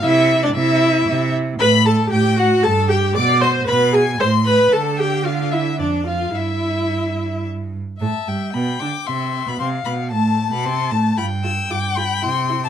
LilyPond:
<<
  \new Staff \with { instrumentName = "Violin" } { \time 3/4 \key c \major \tempo 4 = 114 e''8. d''16 e''4. r8 | b''8 a''8 g''8 fis''8 a''8 g''8 | d'''8 c'''8 b''8 gis''8 c'''8 b''8 | a''8 g''8 f''8 e''8 d''8 f''8 |
e''2 r4 | a''8 g''8 b''8 d'''8 c'''8. b''16 | c'''8 b''8 a''8. b''16 c'''8 a''8 | b''8 e'''8 d'''8 b''8 c'''8. a''16 | }
  \new Staff \with { instrumentName = "Violin" } { \time 3/4 \key c \major e''8. d''16 e''4. r8 | b''8 a''8 g''8 fis''8 a''8 g''8 | d'''8 c'''8 b''8 gis''8 c'''8 b''8 | a''8 g''8 f''8 e''8 d''8 f''8 |
e''2 r4 | e''4 g''4 e''4 | f''4 a''2 | g''2. | }
  \new Staff \with { instrumentName = "Viola" } { \time 3/4 \key c \major e'8. d'16 e'4. r8 | b'8 a'8 g'8 fis'8 a'8 g'8 | d''8 c''8 b'8 gis'8 c''8 b'8 | a'8 g'8 f'8 e'8 d'8 f'8 |
e'2 r4 | a8 g8 b8 d'8 c'8. b16 | c'8 b8 a8. b16 c'8 a8 | f'8 f'8 f'8 f'8 e'8 e'8 | }
  \new Staff \with { instrumentName = "Cello" } { \clef bass \time 3/4 \key c \major c4 c4 c4 | a,4 a,4 g,4 | b,4 b,4 a,4 | d2 f,4 |
g,2~ g,8 r8 | a,8 g,8 b,8 d8 c8. b,16 | c8 b,8 a,8. b,16 c8 a,8 | g,4 g,4 c4 | }
>>